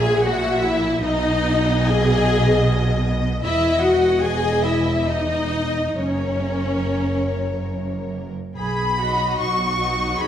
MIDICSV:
0, 0, Header, 1, 6, 480
1, 0, Start_track
1, 0, Key_signature, 5, "major"
1, 0, Tempo, 797872
1, 621, Time_signature, 3, 2, 24, 8
1, 2554, Tempo, 832178
1, 3034, Tempo, 870827
1, 4954, Tempo, 811908
1, 5967, End_track
2, 0, Start_track
2, 0, Title_t, "Violin section"
2, 0, Program_c, 0, 48
2, 0, Note_on_c, 0, 80, 95
2, 120, Note_on_c, 0, 78, 105
2, 138, Note_off_c, 0, 80, 0
2, 364, Note_on_c, 0, 76, 91
2, 370, Note_off_c, 0, 78, 0
2, 599, Note_on_c, 0, 75, 102
2, 610, Note_off_c, 0, 76, 0
2, 1106, Note_on_c, 0, 80, 97
2, 1112, Note_off_c, 0, 75, 0
2, 1828, Note_off_c, 0, 80, 0
2, 2067, Note_on_c, 0, 76, 97
2, 2292, Note_off_c, 0, 76, 0
2, 2295, Note_on_c, 0, 78, 93
2, 2539, Note_on_c, 0, 80, 98
2, 2546, Note_off_c, 0, 78, 0
2, 2771, Note_on_c, 0, 76, 82
2, 2785, Note_off_c, 0, 80, 0
2, 3024, Note_off_c, 0, 76, 0
2, 3031, Note_on_c, 0, 75, 93
2, 3507, Note_on_c, 0, 73, 75
2, 3513, Note_off_c, 0, 75, 0
2, 4718, Note_off_c, 0, 73, 0
2, 5193, Note_on_c, 0, 66, 67
2, 5197, Note_on_c, 0, 75, 65
2, 5669, Note_off_c, 0, 66, 0
2, 5670, Note_off_c, 0, 75, 0
2, 5681, Note_on_c, 0, 66, 65
2, 5684, Note_on_c, 0, 75, 61
2, 5967, Note_off_c, 0, 66, 0
2, 5967, Note_off_c, 0, 75, 0
2, 5967, End_track
3, 0, Start_track
3, 0, Title_t, "Violin section"
3, 0, Program_c, 1, 48
3, 0, Note_on_c, 1, 76, 77
3, 137, Note_off_c, 1, 76, 0
3, 144, Note_on_c, 1, 76, 83
3, 607, Note_off_c, 1, 76, 0
3, 614, Note_on_c, 1, 75, 97
3, 2046, Note_off_c, 1, 75, 0
3, 2073, Note_on_c, 1, 75, 84
3, 2545, Note_off_c, 1, 75, 0
3, 2561, Note_on_c, 1, 75, 80
3, 3029, Note_off_c, 1, 75, 0
3, 3044, Note_on_c, 1, 75, 65
3, 3509, Note_off_c, 1, 75, 0
3, 3528, Note_on_c, 1, 70, 69
3, 4824, Note_off_c, 1, 70, 0
3, 4962, Note_on_c, 1, 83, 93
3, 5420, Note_off_c, 1, 83, 0
3, 5444, Note_on_c, 1, 85, 91
3, 5917, Note_off_c, 1, 85, 0
3, 5917, Note_on_c, 1, 83, 96
3, 5967, Note_off_c, 1, 83, 0
3, 5967, End_track
4, 0, Start_track
4, 0, Title_t, "Viola section"
4, 0, Program_c, 2, 48
4, 0, Note_on_c, 2, 68, 121
4, 146, Note_off_c, 2, 68, 0
4, 151, Note_on_c, 2, 66, 110
4, 386, Note_off_c, 2, 66, 0
4, 389, Note_on_c, 2, 64, 103
4, 621, Note_on_c, 2, 63, 115
4, 622, Note_off_c, 2, 64, 0
4, 1112, Note_off_c, 2, 63, 0
4, 1126, Note_on_c, 2, 68, 122
4, 1837, Note_off_c, 2, 68, 0
4, 2070, Note_on_c, 2, 64, 115
4, 2294, Note_off_c, 2, 64, 0
4, 2308, Note_on_c, 2, 66, 102
4, 2553, Note_off_c, 2, 66, 0
4, 2553, Note_on_c, 2, 68, 103
4, 2789, Note_on_c, 2, 64, 96
4, 2792, Note_off_c, 2, 68, 0
4, 3033, Note_off_c, 2, 64, 0
4, 3041, Note_on_c, 2, 63, 103
4, 3517, Note_off_c, 2, 63, 0
4, 3519, Note_on_c, 2, 61, 97
4, 4725, Note_off_c, 2, 61, 0
4, 5200, Note_on_c, 2, 54, 61
4, 5202, Note_on_c, 2, 63, 61
4, 5672, Note_off_c, 2, 54, 0
4, 5673, Note_off_c, 2, 63, 0
4, 5685, Note_on_c, 2, 54, 63
4, 5689, Note_on_c, 2, 63, 66
4, 5967, Note_off_c, 2, 54, 0
4, 5967, Note_off_c, 2, 63, 0
4, 5967, End_track
5, 0, Start_track
5, 0, Title_t, "Cello section"
5, 0, Program_c, 3, 48
5, 0, Note_on_c, 3, 46, 88
5, 595, Note_off_c, 3, 46, 0
5, 610, Note_on_c, 3, 47, 90
5, 2068, Note_off_c, 3, 47, 0
5, 2068, Note_on_c, 3, 40, 78
5, 3512, Note_off_c, 3, 40, 0
5, 3515, Note_on_c, 3, 42, 67
5, 4818, Note_off_c, 3, 42, 0
5, 4961, Note_on_c, 3, 68, 75
5, 5183, Note_off_c, 3, 68, 0
5, 5204, Note_on_c, 3, 66, 60
5, 5441, Note_off_c, 3, 66, 0
5, 5448, Note_on_c, 3, 66, 72
5, 5910, Note_off_c, 3, 66, 0
5, 5921, Note_on_c, 3, 68, 67
5, 5967, Note_off_c, 3, 68, 0
5, 5967, End_track
6, 0, Start_track
6, 0, Title_t, "Double bass section"
6, 0, Program_c, 4, 48
6, 0, Note_on_c, 4, 34, 88
6, 594, Note_off_c, 4, 34, 0
6, 616, Note_on_c, 4, 35, 89
6, 2067, Note_on_c, 4, 28, 82
6, 2071, Note_off_c, 4, 35, 0
6, 3512, Note_off_c, 4, 28, 0
6, 3513, Note_on_c, 4, 30, 72
6, 4817, Note_off_c, 4, 30, 0
6, 4964, Note_on_c, 4, 35, 72
6, 5387, Note_off_c, 4, 35, 0
6, 5447, Note_on_c, 4, 35, 81
6, 5863, Note_off_c, 4, 35, 0
6, 5919, Note_on_c, 4, 35, 81
6, 5967, Note_off_c, 4, 35, 0
6, 5967, End_track
0, 0, End_of_file